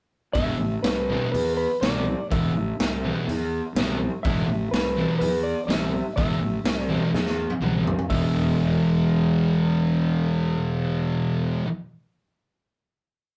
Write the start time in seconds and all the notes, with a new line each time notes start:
0.33 E1 E2 B2 E3 E5, kick, open hi-hat
0.59 A1
0.83 C2 B4, snare, open hi-hat
1.09 E2 B2 E3
1.32 E2 B4, open hi-hat
1.57 B4
1.81 C2 E2 B2 E3 D5, snare, open hi-hat
2.31 E1 E2 B2 E3 E5, kick, open hi-hat
2.55 A1
2.79 C2, snare, open hi-hat
3.04 E2 B2 E3
3.28 E2, open hi-hat
3.75 C2 E2 B2, snare, open hi-hat
3.80 E3
4.23 E1 E2 B2 E5, kick, open hi-hat
4.28 E3
4.48 A1
4.71 C2 B4, snare, open hi-hat
4.97 E2 B2 E3
5.19 E2 B4, open hi-hat
5.43 D5
5.67 C2 E2 B2 E3 E5, snare, open hi-hat
6.16 E1 E2 B2 E3 E5, kick, open hi-hat
6.41 A1
6.64 C2, snare, open hi-hat
6.82 D5
6.89 E2 B2 E3
7.13 E2, snare
7.26 snare
7.50 high tom
7.61 C2 E2 B2 E3, mid tom
7.87 floor tom
7.99 floor tom
8.10 E1 E2 B2 E3 E5, kick, open hi-hat